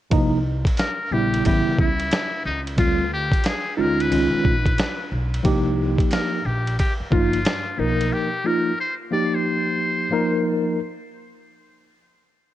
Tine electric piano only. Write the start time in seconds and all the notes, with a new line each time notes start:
0.10 C3 F3 A#3 D#4
1.12 C#3 G3 B3 E4
1.44 C#3 E3 B3 E4
2.76 D3 G3 C4 F4
3.77 G#3 C#4 D#4 F4
4.10 D#3 G#3 C#4 F4
5.43 F3 A#3 D#4 G4
7.11 F3 A#3 D#4 F4
7.78 F3 A#3 D#4 A#4
8.44 F3 A#3 D#4 F4
9.11 F3 A#3 D#4 G4
10.11 F3 A#3 D#4 A#4